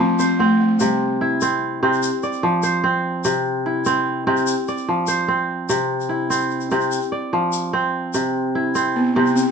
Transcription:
Already playing: kora C4 D5
0.00 kora F3, balafon C4
0.19 balafon C4, kora C5, shaker
0.39 balafon A3, kora C4
0.60 balafon A3
0.79 kora C3, balafon G3, shaker
1.21 kora E4
1.41 kora C4, shaker
1.83 kora C3 C4
1.93 shaker
2.03 shaker
2.23 kora D5, shaker
2.33 shaker
2.43 kora F3
2.63 kora C5, shaker
2.84 kora C4
3.24 kora C3, shaker
3.66 kora E4
3.85 kora C4, shaker
4.27 kora C3 C4
4.37 shaker
4.47 shaker
4.68 kora D5, shaker
4.77 shaker
4.88 kora F3
5.07 kora C5, shaker
5.28 kora C4
5.69 kora C3, shaker
6.00 shaker
6.09 kora E4
6.30 kora C4, shaker
6.41 shaker
6.50 shaker
6.60 shaker
6.71 kora C3 C4, shaker
6.81 shaker
6.92 shaker
7.02 shaker
7.12 kora D5
7.33 kora F3
7.53 shaker
7.73 kora C4
8.14 kora C3, shaker
8.55 kora E4
8.75 kora C4, shaker
8.96 balafon B3
9.15 kora C3 C4, balafon B3
9.26 shaker
9.36 balafon C4, shaker

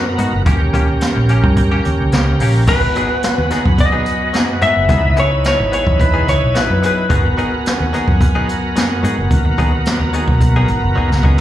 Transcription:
Already playing: tonewheel organ B3 F#4 A#4
0.05 muted clean electric guitar stroke
0.18 fingered electric bass G#2, clean electric guitar D#3 B3 D#4 F#4, closed hi-hat
0.33 fingered electric bass F#1
0.46 fingered electric bass D#2, clean electric guitar A#3 C#4 G4, tonewheel organ C#4 G4 A#4, kick, closed hi-hat
0.62 muted clean electric guitar stroke
0.73 clean electric guitar A#3 C#4 G4, kick, closed hi-hat
0.89 muted clean electric guitar stroke
1.01 snare, closed hi-hat
1.16 fingered electric bass A#1, muted clean electric guitar stroke
1.29 clean electric guitar A#3 C#4 G4, closed hi-hat
1.44 fingered electric bass G2, muted clean electric guitar stroke, kick
1.56 muted clean electric guitar stroke, kick, closed hi-hat
1.72 clean electric guitar A#3 C#4 G4
1.85 fingered electric bass D#2, muted clean electric guitar stroke, closed hi-hat
2.01 fingered electric bass C#2
2.12 fingered electric bass C#2, clean electric guitar A#3 C#4 G4, snare, closed hi-hat
2.27 muted clean electric guitar stroke
2.40 fingered electric bass A#1, clean electric guitar A#3 C#4 G4, open hi-hat
2.56 muted clean electric guitar stroke
2.67 fingered electric bass G#1, clean electric guitar F#3 B3 D#4 G#4, tonewheel organ B3 F#4 B4, lead electric guitar B4, horn section F#5 G#5, kick, crash
2.83 muted clean electric guitar stroke
2.95 clean electric guitar F#3 B3 D#4 G#4, closed hi-hat
3.11 muted clean electric guitar stroke
3.22 snare, closed hi-hat
3.38 fingered electric bass D#2, muted clean electric guitar stroke
3.50 clean electric guitar F#3 B3 D#4 G#4, snare, closed hi-hat
3.66 fingered electric bass F#2, kick
3.78 lead electric guitar D#5, muted clean electric guitar stroke, kick, closed hi-hat
3.92 clean electric guitar F#3 B3 D#4 G#4
4.06 muted clean electric guitar stroke, closed hi-hat
4.33 clean electric guitar F#3 B3 D#4 G#4, snare, closed hi-hat
4.48 muted clean electric guitar stroke
4.61 fingered electric bass G#2, clean electric guitar F#3 B3 D#4 G#4, lead electric guitar E5, closed hi-hat
4.76 fingered electric bass F#1, muted clean electric guitar stroke
4.89 fingered electric bass C#2, clean electric guitar B3 E4 G#4, tonewheel organ D#4 E4 B4, horn section C#5 G#5 B5, kick, closed hi-hat
5.04 muted clean electric guitar stroke
5.16 clean electric guitar B3 E4 G#4, lead electric guitar C#5, closed hi-hat
5.32 muted clean electric guitar stroke
5.44 lead electric guitar C#5, snare, closed hi-hat
5.59 fingered electric bass G#1, muted clean electric guitar stroke
5.72 clean electric guitar B3 E4 G#4, lead electric guitar C#5, closed hi-hat
5.86 fingered electric bass E2, muted clean electric guitar stroke, kick
6.00 lead electric guitar B4, muted clean electric guitar stroke, kick, closed hi-hat
6.14 clean electric guitar B3 E4 G#4
6.27 fingered electric bass C#2, lead electric guitar C#5, muted clean electric guitar stroke, closed hi-hat
6.42 fingered electric bass B1
6.55 clean electric guitar B3 E4 G#4, lead electric guitar B4, snare, closed hi-hat
6.70 fingered electric bass F#2, muted clean electric guitar stroke
6.82 clean electric guitar B3 E4 G#4, lead electric guitar B4, closed hi-hat
6.97 muted clean electric guitar stroke
7.09 fingered electric bass G#1, clean electric guitar F#3 B3 D#4 G#4, tonewheel organ B3 F#4 A#4, horn section F#5 G#5, kick, closed hi-hat
7.37 clean electric guitar F#3 B3 D#4 G#4, closed hi-hat
7.53 muted clean electric guitar stroke
7.66 snare, closed hi-hat
7.80 fingered electric bass D#2, muted clean electric guitar stroke
7.93 clean electric guitar F#3 B3 D#4 G#4, closed hi-hat
8.08 fingered electric bass F#2, muted clean electric guitar stroke, kick
8.21 muted clean electric guitar stroke, kick, closed hi-hat
8.35 clean electric guitar F#3 B3 D#4 G#4
8.49 muted clean electric guitar stroke, closed hi-hat
8.76 clean electric guitar F#3 B3 D#4 G#4, snare, closed hi-hat
8.91 muted clean electric guitar stroke
9.03 fingered electric bass G#2, clean electric guitar F#3 B3 D#4 G#4, closed hi-hat
9.18 fingered electric bass F#1, muted clean electric guitar stroke
9.31 fingered electric bass D#2, horn section A#5, kick, closed hi-hat
9.45 muted clean electric guitar stroke
9.58 clean electric guitar F#3 B3 D#4 G#4, kick, closed hi-hat
9.73 muted clean electric guitar stroke
9.85 snare, closed hi-hat
10.00 fingered electric bass D#2, muted clean electric guitar stroke
10.13 clean electric guitar F#3 B3 D#4 G#4, closed hi-hat
10.27 fingered electric bass B1, muted clean electric guitar stroke, kick
10.41 muted clean electric guitar stroke, kick, closed hi-hat
10.56 clean electric guitar F#3 B3 D#4 G#4
10.68 fingered electric bass G#1, muted clean electric guitar stroke, closed hi-hat
10.83 fingered electric bass F#1
10.96 clean electric guitar F#3 B3 D#4 G#4, kick
11.10 fingered electric bass C#2, muted clean electric guitar stroke, snare
11.23 clean electric guitar F#3 B3 D#4 G#4, kick

